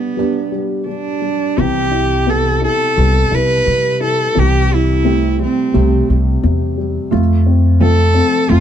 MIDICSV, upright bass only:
0, 0, Header, 1, 2, 480
1, 0, Start_track
1, 0, Key_signature, 0, "minor"
1, 0, Tempo, 692042
1, 1096, Time_signature, 4, 2, 24, 8
1, 5966, End_track
2, 0, Start_track
2, 0, Title_t, "Upright bass"
2, 0, Program_c, 0, 32
2, 1096, Note_on_c, 0, 36, 72
2, 1848, Note_off_c, 0, 36, 0
2, 2065, Note_on_c, 0, 36, 84
2, 2251, Note_off_c, 0, 36, 0
2, 2303, Note_on_c, 0, 36, 77
2, 2489, Note_off_c, 0, 36, 0
2, 2546, Note_on_c, 0, 48, 74
2, 2918, Note_off_c, 0, 48, 0
2, 3030, Note_on_c, 0, 36, 71
2, 3775, Note_off_c, 0, 36, 0
2, 3985, Note_on_c, 0, 36, 85
2, 4170, Note_off_c, 0, 36, 0
2, 4230, Note_on_c, 0, 36, 71
2, 4412, Note_off_c, 0, 36, 0
2, 4463, Note_on_c, 0, 40, 79
2, 4833, Note_off_c, 0, 40, 0
2, 4941, Note_on_c, 0, 41, 84
2, 5680, Note_off_c, 0, 41, 0
2, 5894, Note_on_c, 0, 41, 87
2, 5966, Note_off_c, 0, 41, 0
2, 5966, End_track
0, 0, End_of_file